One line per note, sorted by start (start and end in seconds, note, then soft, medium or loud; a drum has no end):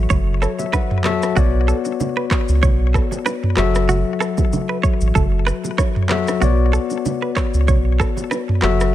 0.00 1.03 F#3 medium
0.00 1.04 F#4 medium
0.00 1.05 A4 medium
0.00 0.59 E5 loud
0.10 0.47 F#1 loud
0.10 0.20 C#5 medium
0.10 kick loud
0.10 low conga medium
0.10 shaker medium
0.42 0.51 A4 medium
0.42 0.58 C#5 medium
0.42 cross-stick medium
0.42 shaker medium
0.59 0.72 E5 medium
0.59 low bongo medium
0.59 shaker medium
0.73 0.91 B4 medium
0.73 1.02 F#5 medium
0.73 kick loud
0.73 cross-stick loud
0.73 high bongo medium
0.73 shaker medium
0.91 mid tom medium
1.03 1.31 F#3 medium
1.03 1.32 F#4 medium
1.03 1.32 A4 medium
1.03 1.33 E5 loud
1.03 1.34 A5 medium
1.03 cross-stick loud
1.03 clap loud
1.03 low bongo medium
1.03 shaker medium
1.23 cross-stick loud
1.23 shaker medium
1.35 1.73 B1 loud
1.35 2.44 B3 medium
1.35 2.44 F#4 medium
1.35 1.46 F#4 loud
1.35 2.45 C#5 medium
1.35 2.45 D5 medium
1.35 kick loud
1.35 low conga medium
1.35 shaker medium
1.68 1.78 A4 medium
1.68 shaker medium
1.85 high bongo medium
1.85 shaker medium
2.00 high bongo medium
2.00 low conga medium
2.00 shaker medium
2.17 2.25 B4 medium
2.31 2.41 C#5 medium
2.31 kick medium
2.31 cross-stick medium
2.31 clap medium
2.31 low bongo medium
2.31 shaker medium
2.49 2.64 C#2 loud
2.49 shaker medium
2.63 2.99 B1 loud
2.63 2.72 C#5 medium
2.63 kick loud
2.63 low conga medium
2.63 shaker medium
2.94 3.04 A4 medium
2.94 kick medium
2.94 cross-stick medium
2.94 shaker soft
3.12 low bongo medium
3.12 shaker medium
3.26 3.43 B4 medium
3.26 cross-stick loud
3.26 high bongo medium
3.26 shaker medium
3.44 mid tom medium
3.56 4.04 F#1 loud
3.56 4.65 F#3 loud
3.56 4.65 F#4 medium
3.56 3.65 G#4 medium
3.56 4.66 E5 loud
3.56 cross-stick loud
3.56 clap loud
3.56 low bongo medium
3.56 shaker medium
3.64 4.69 A4 medium
3.75 cross-stick loud
3.75 shaker medium
3.89 3.99 F#4 loud
3.89 low conga medium
3.89 shaker medium
4.20 4.30 A4 medium
4.20 cross-stick medium
4.20 shaker medium
4.38 kick medium
4.38 high bongo medium
4.38 low bongo medium
4.38 shaker medium
4.53 high bongo medium
4.53 low conga medium
4.53 shaker medium
4.69 4.77 B4 medium
4.83 4.93 C#5 medium
4.83 kick medium
4.83 shaker medium
5.01 5.12 A1 medium
5.01 shaker medium
5.15 5.52 F#1 loud
5.15 5.25 A4 medium
5.15 kick loud
5.15 low conga medium
5.15 shaker medium
5.47 5.56 B4 medium
5.47 cross-stick medium
5.47 shaker medium
5.64 low bongo medium
5.64 shaker medium
5.78 5.96 C#5 medium
5.78 kick loud
5.78 cross-stick loud
5.78 high bongo medium
5.78 shaker medium
5.96 mid tom medium
6.09 6.37 F#3 medium
6.09 6.37 F#4 medium
6.09 6.37 A4 medium
6.09 6.38 E5 loud
6.09 cross-stick loud
6.09 clap loud
6.09 low bongo medium
6.09 shaker medium
6.28 cross-stick loud
6.28 high bongo medium
6.28 shaker medium
6.40 6.78 B1 loud
6.40 7.49 B3 medium
6.40 7.50 F#4 medium
6.40 6.51 F#4 loud
6.40 7.50 C#5 medium
6.40 7.50 D5 loud
6.40 low conga medium
6.40 shaker medium
6.73 6.83 A4 medium
6.73 shaker medium
6.90 high bongo medium
6.90 shaker medium
7.06 high bongo medium
7.06 low conga medium
7.06 shaker medium
7.22 7.30 B4 medium
7.36 7.46 C#5 medium
7.36 kick medium
7.36 cross-stick medium
7.36 clap medium
7.36 low bongo medium
7.36 shaker medium
7.54 7.70 C#2 medium
7.54 shaker medium
7.68 8.05 B1 loud
7.68 7.78 C#5 medium
7.68 kick loud
7.68 low conga medium
7.68 shaker medium
8.00 8.09 A4 medium
8.00 kick medium
8.00 cross-stick medium
8.00 shaker medium
8.17 low bongo medium
8.17 shaker medium
8.31 8.49 B4 medium
8.31 cross-stick loud
8.31 high bongo medium
8.31 shaker medium
8.49 mid tom loud
8.62 8.95 F#1 loud
8.62 8.95 F#3 loud
8.62 8.95 F#4 medium
8.62 8.95 A4 medium
8.62 8.95 E5 loud
8.62 cross-stick loud
8.62 clap loud
8.62 low bongo medium
8.62 shaker medium
8.81 cross-stick loud
8.81 shaker medium